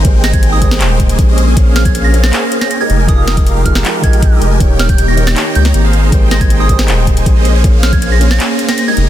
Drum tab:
HH |x-xxx-x-x-xxx-x-|x-xxx-x-x-xxx-x-|x-xxx-x-x-xxx-x-|x-xxx-x-x-xxx-x-|
CP |--------x-------|--------x-------|--------x-------|--------x-------|
SD |--o----o--------|--o----o---o----|--o----o--------|--o----o---o----|
BD |o--o--o---o-o---|o--o------------|o--o--o---o-o---|o--o------------|

HH |x-xxx-x-x-xxx-x-|x-xxx-x-x-xxx-x-|
CP |--------x-------|--------x-------|
SD |--o----o--------|--o----o---o----|
BD |o--o--o---o-o---|o--o------------|